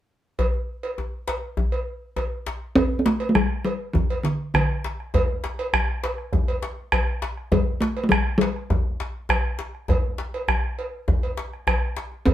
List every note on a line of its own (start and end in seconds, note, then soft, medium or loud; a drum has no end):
0.39 cowbell medium
0.39 djembe tone medium
0.39 djembe bass medium
0.54 djembe slap soft
0.83 cowbell soft
0.98 djembe tone medium
1.27 cowbell soft
1.27 djembe slap medium
1.57 djembe tone medium
1.57 djembe bass medium
1.72 cowbell soft
2.16 cowbell soft
2.16 djembe tone medium
2.46 djembe slap medium
2.75 2.99 C4 loud
2.75 bombo low medium
2.75 cowbell medium
2.75 djembe tone medium
2.75 djembe bass medium
2.99 3.07 C4 medium
3.06 3.29 A3 medium
3.06 bombo rim soft
3.06 djembe slap medium
3.20 bombo rim soft
3.20 cowbell soft
3.29 3.37 A3 medium
3.35 3.64 G3 medium
3.35 bombo rim medium
3.35 djembe tone medium
3.35 djembe bass medium
3.50 djembe slap soft
3.65 3.93 G3 medium
3.65 cowbell soft
3.93 4.07 E3 medium
3.93 bombo low medium
3.93 djembe tone medium
3.93 djembe bass medium
4.10 cowbell soft
4.23 4.52 D3 medium
4.23 djembe slap medium
4.54 4.96 D3 medium
4.54 bombo rim loud
4.54 cowbell medium
4.54 djembe tone medium
4.54 djembe bass medium
4.70 djembe slap soft
4.84 djembe slap medium
5.00 bombo rim soft
5.14 bombo low loud
5.14 cowbell medium
5.14 djembe tone medium
5.14 djembe bass medium
5.44 bombo rim soft
5.44 djembe slap medium
5.59 bombo rim soft
5.59 cowbell medium
5.73 bombo rim loud
5.73 djembe tone medium
5.73 djembe bass medium
5.88 djembe slap soft
6.03 cowbell soft
6.03 djembe slap medium
6.18 bombo rim soft
6.33 bombo low loud
6.33 djembe tone medium
6.33 djembe bass medium
6.48 cowbell soft
6.62 djembe slap medium
6.92 bombo rim loud
6.92 cowbell soft
6.92 djembe tone medium
6.92 djembe bass medium
7.22 djembe slap medium
7.37 bombo rim soft
7.52 7.82 G3 medium
7.52 bombo low loud
7.52 cowbell soft
7.52 djembe tone medium
7.52 djembe bass medium
7.81 8.04 A3 medium
7.81 bombo rim soft
7.81 djembe slap medium
7.97 bombo rim soft
7.97 cowbell soft
8.04 8.10 A3 medium
8.09 8.37 G3 medium
8.09 bombo rim loud
8.09 djembe tone medium
8.09 djembe bass medium
8.26 djembe slap soft
8.38 8.95 G3 medium
8.38 cowbell soft
8.38 djembe slap medium
8.56 bombo rim soft
8.70 bombo low loud
8.70 djembe tone medium
8.70 djembe bass medium
9.00 djembe slap medium
9.29 bombo rim loud
9.29 cowbell soft
9.29 djembe tone medium
9.29 djembe bass medium
9.44 djembe slap soft
9.59 djembe slap medium
9.75 bombo rim soft
9.88 bombo rim soft
9.88 bombo low loud
9.88 cowbell soft
9.88 djembe tone medium
9.88 djembe bass medium
10.04 djembe slap soft
10.18 djembe slap medium
10.34 bombo rim soft
10.34 cowbell soft
10.48 bombo rim loud
10.48 djembe tone medium
10.48 djembe bass medium
10.64 djembe slap soft
10.79 cowbell soft
11.08 bombo low medium
11.08 djembe slap soft
11.08 djembe tone medium
11.08 djembe bass medium
11.23 cowbell soft
11.37 djembe slap medium
11.53 bombo rim soft
11.67 bombo rim loud
11.67 cowbell soft
11.67 djembe tone medium
11.67 djembe bass medium
11.97 djembe slap medium
12.12 djembe slap soft
12.26 12.34 C4 loud
12.26 bombo low loud
12.26 cowbell medium
12.26 djembe tone medium
12.26 djembe bass medium